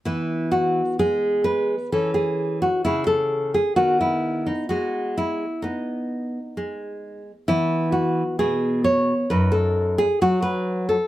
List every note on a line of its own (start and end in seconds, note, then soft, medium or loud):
0.05 0.81 E3 medium
0.05 1.89 B3 soft
0.05 0.51 E4 medium
0.52 0.97 F#4 medium
0.99 1.74 G#3 medium
0.99 1.44 G#4 medium
1.44 1.90 B4 medium
1.92 2.67 E3 soft
1.92 3.74 C#4 soft
1.92 2.14 A4 medium
2.14 2.60 G#4 medium
2.62 2.84 F#4 medium
2.85 3.59 C#3 medium
2.85 3.06 E4 medium
3.07 3.52 A4 medium
3.54 3.76 G#4 medium
3.76 4.51 D#3 medium
3.76 5.62 B3 soft
3.76 4.00 F#4 medium
4.01 4.45 E4 medium
4.46 4.69 D#4 medium
4.69 5.44 G#3 medium
4.69 5.14 F#4 medium
5.17 5.61 E4 medium
5.62 6.38 B3 medium
5.62 7.22 D#4 medium
6.57 7.31 G#3 medium
7.48 8.22 E3 medium
7.48 9.27 B3 soft
7.48 7.92 E4 medium
7.92 8.37 F#4 medium
8.39 9.12 B2 medium
8.39 8.83 G#4 medium
8.84 9.28 C#5 medium
9.30 10.04 F#2 medium
9.30 11.07 D#4 soft
9.30 9.53 B4 medium
9.52 9.97 A4 medium
9.98 10.21 G#4 medium
10.22 10.95 F#3 medium
10.22 10.42 F#4 medium
10.42 10.88 B4 medium
10.89 11.07 A4 medium